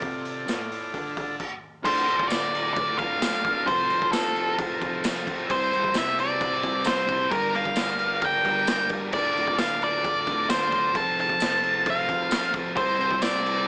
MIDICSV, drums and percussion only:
0, 0, Header, 1, 2, 480
1, 0, Start_track
1, 0, Key_signature, -1, "minor"
1, 0, Tempo, 455581
1, 27, Time_signature, 4, 2, 24, 8
1, 14410, End_track
2, 0, Start_track
2, 0, Title_t, "Drums"
2, 14, Note_on_c, 9, 46, 78
2, 22, Note_on_c, 9, 36, 100
2, 119, Note_off_c, 9, 46, 0
2, 127, Note_off_c, 9, 36, 0
2, 262, Note_on_c, 9, 46, 59
2, 368, Note_off_c, 9, 46, 0
2, 508, Note_on_c, 9, 54, 93
2, 512, Note_on_c, 9, 46, 62
2, 517, Note_on_c, 9, 38, 99
2, 613, Note_off_c, 9, 54, 0
2, 617, Note_off_c, 9, 46, 0
2, 622, Note_off_c, 9, 38, 0
2, 754, Note_on_c, 9, 46, 63
2, 860, Note_off_c, 9, 46, 0
2, 990, Note_on_c, 9, 36, 77
2, 990, Note_on_c, 9, 46, 78
2, 1095, Note_off_c, 9, 46, 0
2, 1096, Note_off_c, 9, 36, 0
2, 1233, Note_on_c, 9, 36, 94
2, 1233, Note_on_c, 9, 46, 64
2, 1339, Note_off_c, 9, 36, 0
2, 1339, Note_off_c, 9, 46, 0
2, 1474, Note_on_c, 9, 36, 99
2, 1476, Note_on_c, 9, 49, 99
2, 1580, Note_off_c, 9, 36, 0
2, 1581, Note_off_c, 9, 49, 0
2, 1952, Note_on_c, 9, 49, 124
2, 1952, Note_on_c, 9, 57, 90
2, 1955, Note_on_c, 9, 36, 126
2, 2057, Note_off_c, 9, 49, 0
2, 2057, Note_off_c, 9, 57, 0
2, 2060, Note_off_c, 9, 36, 0
2, 2195, Note_on_c, 9, 57, 65
2, 2301, Note_off_c, 9, 57, 0
2, 2314, Note_on_c, 9, 36, 79
2, 2419, Note_off_c, 9, 36, 0
2, 2427, Note_on_c, 9, 54, 110
2, 2436, Note_on_c, 9, 57, 78
2, 2441, Note_on_c, 9, 38, 92
2, 2532, Note_off_c, 9, 54, 0
2, 2541, Note_off_c, 9, 57, 0
2, 2547, Note_off_c, 9, 38, 0
2, 2685, Note_on_c, 9, 57, 67
2, 2790, Note_off_c, 9, 57, 0
2, 2911, Note_on_c, 9, 57, 80
2, 2914, Note_on_c, 9, 36, 114
2, 3017, Note_off_c, 9, 57, 0
2, 3020, Note_off_c, 9, 36, 0
2, 3149, Note_on_c, 9, 57, 66
2, 3151, Note_on_c, 9, 36, 92
2, 3254, Note_off_c, 9, 57, 0
2, 3256, Note_off_c, 9, 36, 0
2, 3391, Note_on_c, 9, 57, 82
2, 3395, Note_on_c, 9, 54, 106
2, 3397, Note_on_c, 9, 38, 125
2, 3497, Note_off_c, 9, 57, 0
2, 3501, Note_off_c, 9, 54, 0
2, 3502, Note_off_c, 9, 38, 0
2, 3633, Note_on_c, 9, 36, 89
2, 3633, Note_on_c, 9, 57, 66
2, 3738, Note_off_c, 9, 36, 0
2, 3738, Note_off_c, 9, 57, 0
2, 3871, Note_on_c, 9, 57, 87
2, 3873, Note_on_c, 9, 36, 121
2, 3976, Note_off_c, 9, 57, 0
2, 3978, Note_off_c, 9, 36, 0
2, 4111, Note_on_c, 9, 57, 59
2, 4216, Note_off_c, 9, 57, 0
2, 4235, Note_on_c, 9, 36, 75
2, 4340, Note_off_c, 9, 36, 0
2, 4349, Note_on_c, 9, 57, 83
2, 4354, Note_on_c, 9, 38, 109
2, 4354, Note_on_c, 9, 54, 104
2, 4454, Note_off_c, 9, 57, 0
2, 4459, Note_off_c, 9, 54, 0
2, 4460, Note_off_c, 9, 38, 0
2, 4593, Note_on_c, 9, 57, 64
2, 4698, Note_off_c, 9, 57, 0
2, 4831, Note_on_c, 9, 36, 113
2, 4832, Note_on_c, 9, 57, 88
2, 4937, Note_off_c, 9, 36, 0
2, 4937, Note_off_c, 9, 57, 0
2, 5073, Note_on_c, 9, 36, 97
2, 5076, Note_on_c, 9, 57, 66
2, 5178, Note_off_c, 9, 36, 0
2, 5181, Note_off_c, 9, 57, 0
2, 5308, Note_on_c, 9, 54, 100
2, 5313, Note_on_c, 9, 57, 96
2, 5318, Note_on_c, 9, 38, 127
2, 5413, Note_off_c, 9, 54, 0
2, 5418, Note_off_c, 9, 57, 0
2, 5424, Note_off_c, 9, 38, 0
2, 5553, Note_on_c, 9, 36, 96
2, 5556, Note_on_c, 9, 57, 78
2, 5658, Note_off_c, 9, 36, 0
2, 5661, Note_off_c, 9, 57, 0
2, 5793, Note_on_c, 9, 36, 127
2, 5794, Note_on_c, 9, 57, 99
2, 5899, Note_off_c, 9, 36, 0
2, 5899, Note_off_c, 9, 57, 0
2, 6037, Note_on_c, 9, 57, 64
2, 6142, Note_off_c, 9, 57, 0
2, 6151, Note_on_c, 9, 36, 70
2, 6256, Note_off_c, 9, 36, 0
2, 6260, Note_on_c, 9, 54, 90
2, 6265, Note_on_c, 9, 57, 83
2, 6270, Note_on_c, 9, 38, 108
2, 6365, Note_off_c, 9, 54, 0
2, 6370, Note_off_c, 9, 57, 0
2, 6375, Note_off_c, 9, 38, 0
2, 6517, Note_on_c, 9, 57, 71
2, 6622, Note_off_c, 9, 57, 0
2, 6752, Note_on_c, 9, 36, 109
2, 6756, Note_on_c, 9, 57, 76
2, 6857, Note_off_c, 9, 36, 0
2, 6862, Note_off_c, 9, 57, 0
2, 6989, Note_on_c, 9, 36, 86
2, 6995, Note_on_c, 9, 57, 60
2, 7095, Note_off_c, 9, 36, 0
2, 7100, Note_off_c, 9, 57, 0
2, 7211, Note_on_c, 9, 54, 99
2, 7234, Note_on_c, 9, 57, 93
2, 7239, Note_on_c, 9, 38, 126
2, 7317, Note_off_c, 9, 54, 0
2, 7339, Note_off_c, 9, 57, 0
2, 7345, Note_off_c, 9, 38, 0
2, 7467, Note_on_c, 9, 36, 95
2, 7469, Note_on_c, 9, 57, 64
2, 7572, Note_off_c, 9, 36, 0
2, 7575, Note_off_c, 9, 57, 0
2, 7707, Note_on_c, 9, 36, 127
2, 7708, Note_on_c, 9, 57, 88
2, 7812, Note_off_c, 9, 36, 0
2, 7814, Note_off_c, 9, 57, 0
2, 7951, Note_on_c, 9, 57, 60
2, 8056, Note_off_c, 9, 57, 0
2, 8064, Note_on_c, 9, 36, 81
2, 8169, Note_off_c, 9, 36, 0
2, 8172, Note_on_c, 9, 54, 85
2, 8178, Note_on_c, 9, 57, 77
2, 8184, Note_on_c, 9, 38, 111
2, 8278, Note_off_c, 9, 54, 0
2, 8284, Note_off_c, 9, 57, 0
2, 8289, Note_off_c, 9, 38, 0
2, 8417, Note_on_c, 9, 57, 68
2, 8522, Note_off_c, 9, 57, 0
2, 8655, Note_on_c, 9, 57, 87
2, 8662, Note_on_c, 9, 36, 111
2, 8760, Note_off_c, 9, 57, 0
2, 8767, Note_off_c, 9, 36, 0
2, 8903, Note_on_c, 9, 36, 88
2, 8906, Note_on_c, 9, 57, 74
2, 9008, Note_off_c, 9, 36, 0
2, 9011, Note_off_c, 9, 57, 0
2, 9138, Note_on_c, 9, 54, 101
2, 9141, Note_on_c, 9, 57, 89
2, 9146, Note_on_c, 9, 38, 126
2, 9243, Note_off_c, 9, 54, 0
2, 9246, Note_off_c, 9, 57, 0
2, 9252, Note_off_c, 9, 38, 0
2, 9370, Note_on_c, 9, 57, 77
2, 9379, Note_on_c, 9, 36, 87
2, 9475, Note_off_c, 9, 57, 0
2, 9485, Note_off_c, 9, 36, 0
2, 9613, Note_on_c, 9, 57, 99
2, 9620, Note_on_c, 9, 36, 127
2, 9718, Note_off_c, 9, 57, 0
2, 9726, Note_off_c, 9, 36, 0
2, 9871, Note_on_c, 9, 57, 65
2, 9976, Note_off_c, 9, 57, 0
2, 9983, Note_on_c, 9, 36, 76
2, 10088, Note_off_c, 9, 36, 0
2, 10095, Note_on_c, 9, 57, 80
2, 10100, Note_on_c, 9, 38, 106
2, 10100, Note_on_c, 9, 54, 95
2, 10200, Note_off_c, 9, 57, 0
2, 10205, Note_off_c, 9, 54, 0
2, 10206, Note_off_c, 9, 38, 0
2, 10345, Note_on_c, 9, 57, 69
2, 10450, Note_off_c, 9, 57, 0
2, 10583, Note_on_c, 9, 36, 116
2, 10585, Note_on_c, 9, 57, 76
2, 10689, Note_off_c, 9, 36, 0
2, 10690, Note_off_c, 9, 57, 0
2, 10821, Note_on_c, 9, 36, 98
2, 10823, Note_on_c, 9, 57, 69
2, 10927, Note_off_c, 9, 36, 0
2, 10928, Note_off_c, 9, 57, 0
2, 11057, Note_on_c, 9, 57, 86
2, 11060, Note_on_c, 9, 54, 113
2, 11063, Note_on_c, 9, 38, 127
2, 11163, Note_off_c, 9, 57, 0
2, 11165, Note_off_c, 9, 54, 0
2, 11168, Note_off_c, 9, 38, 0
2, 11295, Note_on_c, 9, 57, 72
2, 11299, Note_on_c, 9, 36, 91
2, 11401, Note_off_c, 9, 57, 0
2, 11404, Note_off_c, 9, 36, 0
2, 11538, Note_on_c, 9, 36, 120
2, 11540, Note_on_c, 9, 57, 82
2, 11643, Note_off_c, 9, 36, 0
2, 11646, Note_off_c, 9, 57, 0
2, 11788, Note_on_c, 9, 57, 54
2, 11893, Note_off_c, 9, 57, 0
2, 11899, Note_on_c, 9, 36, 77
2, 12004, Note_off_c, 9, 36, 0
2, 12012, Note_on_c, 9, 54, 100
2, 12028, Note_on_c, 9, 57, 69
2, 12033, Note_on_c, 9, 38, 114
2, 12117, Note_off_c, 9, 54, 0
2, 12133, Note_off_c, 9, 57, 0
2, 12139, Note_off_c, 9, 38, 0
2, 12259, Note_on_c, 9, 57, 66
2, 12365, Note_off_c, 9, 57, 0
2, 12499, Note_on_c, 9, 36, 123
2, 12504, Note_on_c, 9, 57, 88
2, 12604, Note_off_c, 9, 36, 0
2, 12609, Note_off_c, 9, 57, 0
2, 12737, Note_on_c, 9, 36, 95
2, 12739, Note_on_c, 9, 57, 62
2, 12842, Note_off_c, 9, 36, 0
2, 12845, Note_off_c, 9, 57, 0
2, 12970, Note_on_c, 9, 54, 104
2, 12977, Note_on_c, 9, 57, 96
2, 12983, Note_on_c, 9, 38, 124
2, 13075, Note_off_c, 9, 54, 0
2, 13083, Note_off_c, 9, 57, 0
2, 13088, Note_off_c, 9, 38, 0
2, 13211, Note_on_c, 9, 57, 74
2, 13212, Note_on_c, 9, 36, 99
2, 13316, Note_off_c, 9, 57, 0
2, 13317, Note_off_c, 9, 36, 0
2, 13448, Note_on_c, 9, 57, 90
2, 13452, Note_on_c, 9, 36, 115
2, 13554, Note_off_c, 9, 57, 0
2, 13557, Note_off_c, 9, 36, 0
2, 13702, Note_on_c, 9, 57, 57
2, 13807, Note_off_c, 9, 57, 0
2, 13809, Note_on_c, 9, 36, 72
2, 13915, Note_off_c, 9, 36, 0
2, 13928, Note_on_c, 9, 54, 102
2, 13931, Note_on_c, 9, 57, 83
2, 13936, Note_on_c, 9, 38, 105
2, 14033, Note_off_c, 9, 54, 0
2, 14036, Note_off_c, 9, 57, 0
2, 14042, Note_off_c, 9, 38, 0
2, 14182, Note_on_c, 9, 57, 77
2, 14287, Note_off_c, 9, 57, 0
2, 14410, End_track
0, 0, End_of_file